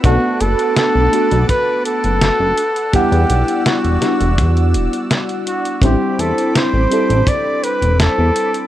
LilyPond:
<<
  \new Staff \with { instrumentName = "Analog synth pad" } { \time 4/4 \key a \dorian \tempo 4 = 83 << { <b' a'' d'''>2.~ <b' a'' d'''>8 <d'' e'''>8~ | <d'' e'''>1 | <c' b'' d'''>1 | } \\ { fis''1~ | fis''1 | r1 | } >> }
  \new Staff \with { instrumentName = "Flugelhorn" } { \time 4/4 \key a \dorian fis'8 a'8 a'4 b'8 a'4. | g'4 fis'4. r4 fis'8 | g'8 a'8 c''4 d''8 b'8 a'4 | }
  \new Staff \with { instrumentName = "FM electric piano" } { \time 4/4 \key a \dorian <a b d' fis' a'>4. <a b d' fis' a'>2 r8 | <g b d' e' fis''>4. <g b d' e' fis'>2~ <g b d' e' fis'>8 | <g c' d' e' c''>4. <g c' d' e' a'>2~ <g c' d' e' a'>8 | }
  \new Staff \with { instrumentName = "Analog synth bass" } { \clef bass \time 4/4 \key a \dorian b,,16 r16 fis,,16 r8 b,,16 r16 b,,16 r8. fis,,16 r16 fis,,16 r8 | e,16 e,16 b,,16 r8 e,,16 r16 e,,16 e,8 e,,16 r4 r16 | a,,16 r16 e,16 r8 a,,16 r16 a,,16 r8. e,,16 r16 e,16 r8 | }
  \new DrumStaff \with { instrumentName = "Drums" } \drummode { \time 4/4 <hh bd>8 hh16 hh16 <hh sn>8 hh16 hh16 <hh bd>8 hh16 hh16 <hh sn>8 hh16 hh16 | <hh bd>16 hh16 hh16 hh16 <hh sn>16 hh16 <hh sn>16 hh16 <hh bd>16 hh16 hh16 hh16 <hh sn>16 hh16 hh16 hh16 | <hh bd>8 hh16 hh16 <hh sn>8 hh16 hh16 <hh bd>8 hh16 hh16 <hh sn>8 hh16 hh16 | }
>>